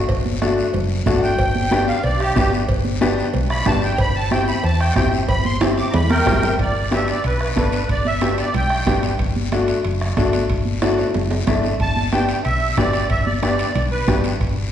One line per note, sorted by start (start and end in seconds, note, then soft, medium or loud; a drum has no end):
0.09 0.61 G1 medium
0.09 bombo low medium
0.09 cowbell loud
0.09 long guiro medium
0.26 high conga medium
0.41 0.64 A3 medium
0.41 0.64 D4 medium
0.41 0.65 F#4 medium
0.41 bombo rim medium
0.41 high conga medium
0.41 short guiro medium
0.58 short guiro medium
0.74 1.00 F#1 medium
0.74 cowbell medium
0.74 low conga medium
0.74 long guiro medium
1.06 1.33 G1 loud
1.06 1.29 A3 medium
1.06 1.29 D4 medium
1.06 1.29 F#4 medium
1.06 bombo low medium
1.06 bombo rim medium
1.06 high conga medium
1.06 low conga medium
1.06 short guiro medium
1.18 1.21 F#5 medium
1.23 1.86 G5 loud
1.23 short guiro medium
1.38 1.91 G1 medium
1.38 bombo low medium
1.38 cowbell medium
1.38 long guiro medium
1.55 high conga medium
1.71 1.94 B3 medium
1.71 1.94 D4 medium
1.71 1.94 G4 medium
1.71 bombo rim medium
1.71 high conga medium
1.71 short guiro medium
1.88 2.03 F5 medium
1.88 short guiro medium
2.03 2.30 B1 medium
2.03 2.19 D5 medium
2.03 cowbell medium
2.03 long guiro medium
2.20 2.51 G4 medium
2.20 bombo rim medium
2.36 2.63 G1 loud
2.36 2.59 B3 medium
2.36 2.59 D4 medium
2.36 2.59 G4 medium
2.36 bombo low medium
2.36 bombo rim medium
2.36 high conga medium
2.36 short guiro medium
2.52 short guiro medium
2.69 3.21 G1 loud
2.69 bombo low medium
2.69 cowbell medium
2.69 long guiro medium
2.85 high conga medium
3.01 3.24 B3 medium
3.01 3.24 D4 medium
3.01 3.24 G4 medium
3.01 bombo rim medium
3.01 high conga medium
3.01 short guiro medium
3.18 short guiro medium
3.34 3.60 B1 medium
3.34 cowbell medium
3.34 low conga medium
3.34 long guiro medium
3.50 3.66 B5 loud
3.50 bombo rim medium
3.66 3.92 G1 loud
3.66 3.89 B3 medium
3.66 3.89 D4 medium
3.66 3.89 G4 medium
3.66 3.82 A5 medium
3.66 bombo low medium
3.66 bombo rim medium
3.66 high conga medium
3.66 low conga medium
3.66 low timbale medium
3.66 short guiro medium
3.82 3.99 G5 medium
3.82 short guiro medium
3.96 4.51 G1 loud
3.96 3.98 A#5 medium
3.96 bombo low medium
3.96 cowbell loud
3.96 long guiro medium
4.00 4.15 B5 loud
4.16 4.31 A5 medium
4.31 4.54 C4 medium
4.31 4.54 E4 medium
4.31 4.54 G4 medium
4.31 4.47 G5 medium
4.31 bombo rim medium
4.31 high conga medium
4.31 short guiro medium
4.48 4.64 B5 medium
4.48 short guiro medium
4.63 4.90 E2 medium
4.63 4.80 A5 medium
4.63 cowbell medium
4.63 long guiro medium
4.80 4.95 G5 medium
4.80 bombo rim medium
4.92 4.94 F#5 medium
4.92 high conga medium
4.96 5.22 G1 loud
4.96 5.19 C4 medium
4.96 5.19 E4 medium
4.96 5.20 G4 medium
4.96 5.12 G5 medium
4.96 bombo low medium
4.96 bombo rim medium
4.96 short guiro medium
5.13 short guiro medium
5.28 5.81 G1 loud
5.28 5.44 B5 loud
5.28 bombo low medium
5.28 cowbell loud
5.28 long guiro medium
5.45 5.61 C6 medium
5.45 high conga medium
5.61 5.84 C4 medium
5.61 5.84 E4 medium
5.61 5.85 G4 medium
5.61 bombo rim medium
5.61 high conga medium
5.61 high timbale loud
5.61 short guiro medium
5.78 5.93 D6 medium
5.78 high timbale medium
5.78 short guiro medium
5.90 5.92 A#5 medium
5.90 cowbell medium
5.90 low timbale loud
5.94 6.20 E2 loud
5.94 6.10 B5 medium
5.94 low conga medium
5.94 long guiro medium
6.10 6.56 A#4 medium
6.10 6.58 G5 loud
6.10 bombo rim medium
6.10 high conga loud
6.10 low timbale medium
6.26 6.53 G1 loud
6.26 6.49 C4 medium
6.26 6.49 E4 medium
6.26 6.49 G4 medium
6.26 bombo low medium
6.26 bombo rim medium
6.26 low timbale medium
6.26 short guiro medium
6.32 low conga medium
6.43 low conga medium
6.43 low timbale medium
6.43 short guiro medium
6.59 7.11 G1 medium
6.59 6.90 D5 medium
6.59 bombo low medium
6.59 high timbale medium
6.59 long guiro medium
6.91 7.14 B3 medium
6.91 7.14 D4 medium
6.91 7.15 G4 medium
6.91 7.09 E5 medium
6.91 bombo rim medium
6.91 high conga medium
6.91 high timbale medium
6.91 short guiro medium
7.08 7.25 D5 medium
7.08 high timbale medium
7.08 short guiro medium
7.24 7.50 B1 medium
7.24 7.41 B4 medium
7.24 high timbale medium
7.24 long guiro medium
7.41 7.49 B4 medium
7.41 bombo rim medium
7.56 7.83 G1 medium
7.56 7.79 B3 medium
7.56 7.79 D4 medium
7.56 7.80 A4 medium
7.56 7.88 B4 medium
7.56 bombo low medium
7.56 bombo rim medium
7.56 high conga medium
7.56 high timbale medium
7.56 short guiro medium
7.72 high timbale medium
7.72 short guiro medium
7.89 8.42 G1 medium
7.89 8.07 D5 medium
7.89 bombo low medium
7.89 high timbale medium
7.89 long guiro medium
8.05 8.36 E5 medium
8.05 high conga medium
8.21 8.44 B3 medium
8.21 8.45 D4 medium
8.21 8.45 G4 medium
8.21 bombo rim medium
8.21 high conga medium
8.21 high timbale medium
8.21 short guiro medium
8.38 8.54 D5 medium
8.38 high timbale medium
8.38 short guiro medium
8.54 8.81 B1 medium
8.54 9.01 G5 loud
8.54 low conga medium
8.54 high timbale medium
8.54 long guiro medium
8.70 bombo rim medium
8.86 9.13 G1 medium
8.86 9.10 B3 medium
8.86 9.10 D4 medium
8.86 9.10 G4 medium
8.86 bombo low medium
8.86 bombo rim medium
8.86 high conga medium
8.86 low conga medium
8.86 high timbale medium
8.86 short guiro medium
9.03 high timbale medium
9.03 short guiro medium
9.19 9.72 G1 medium
9.19 bombo low medium
9.19 high timbale medium
9.19 long guiro medium
9.36 high conga medium
9.52 9.75 A3 medium
9.52 9.75 D4 medium
9.52 9.75 F#4 medium
9.52 bombo rim medium
9.52 high conga medium
9.52 high timbale medium
9.52 short guiro medium
9.68 high timbale medium
9.68 short guiro medium
9.85 10.11 F#1 medium
9.85 high timbale medium
9.85 long guiro medium
10.01 bombo rim medium
10.17 10.43 G1 loud
10.17 10.40 A3 medium
10.17 10.40 D4 medium
10.17 10.41 F#4 medium
10.17 bombo low medium
10.17 bombo rim medium
10.17 high conga medium
10.17 high timbale medium
10.17 low timbale medium
10.17 short guiro medium
10.33 high timbale medium
10.33 short guiro medium
10.50 11.02 G1 medium
10.50 bombo low medium
10.50 high timbale medium
10.50 long guiro medium
10.66 high conga medium
10.82 11.05 A3 medium
10.82 11.05 D4 medium
10.82 11.05 F#4 medium
10.82 bombo rim medium
10.82 high conga medium
10.82 high timbale medium
10.82 short guiro medium
10.98 high timbale medium
10.98 short guiro medium
11.14 11.41 F#1 medium
11.14 low conga medium
11.14 low timbale medium
11.14 long guiro medium
11.31 low timbale medium
11.47 11.74 G1 medium
11.47 11.70 A3 medium
11.47 11.70 D4 medium
11.47 11.71 E4 medium
11.47 bombo low medium
11.47 bombo rim medium
11.47 high conga medium
11.47 low conga medium
11.47 low timbale medium
11.47 short guiro medium
11.63 low timbale medium
11.63 short guiro medium
11.80 12.32 G1 medium
11.80 12.11 A5 loud
11.80 bombo low medium
11.80 high timbale medium
11.80 long guiro medium
11.96 high conga medium
12.12 12.35 B3 medium
12.12 12.36 D4 medium
12.12 12.36 G4 medium
12.12 12.27 G5 medium
12.12 bombo rim medium
12.12 high conga medium
12.12 high timbale medium
12.12 short guiro medium
12.29 12.36 G5 medium
12.29 high timbale medium
12.29 short guiro medium
12.44 12.72 B1 medium
12.44 12.75 E5 loud
12.44 high timbale medium
12.44 long guiro medium
12.77 13.04 G1 loud
12.77 13.00 B3 medium
12.77 13.01 D4 medium
12.77 13.01 G4 medium
12.77 13.08 D5 medium
12.77 bombo low medium
12.77 bombo rim medium
12.77 high conga medium
12.77 high timbale medium
12.77 short guiro medium
12.93 high timbale medium
12.93 short guiro medium
13.10 13.62 G1 medium
13.10 13.25 E5 medium
13.10 bombo low medium
13.10 high timbale medium
13.10 long guiro medium
13.26 13.33 D5 medium
13.26 high conga medium
13.42 13.65 B3 medium
13.42 13.66 D4 medium
13.42 13.66 G4 medium
13.42 13.73 D5 medium
13.42 bombo rim medium
13.42 high conga medium
13.42 high timbale medium
13.42 short guiro medium
13.59 high timbale medium
13.59 short guiro medium
13.75 14.01 B1 medium
13.75 13.82 D5 medium
13.75 low conga medium
13.75 high timbale medium
13.75 long guiro medium
13.91 14.22 B4 medium
14.08 14.34 G1 loud
14.08 14.30 B3 medium
14.08 14.31 D4 medium
14.08 14.31 G4 medium
14.08 bombo low medium
14.08 bombo rim medium
14.08 high conga medium
14.08 low conga medium
14.08 high timbale medium
14.08 short guiro medium
14.24 high timbale medium
14.24 short guiro medium
14.41 14.72 G1 medium
14.41 bombo low medium
14.41 high timbale medium
14.41 long guiro medium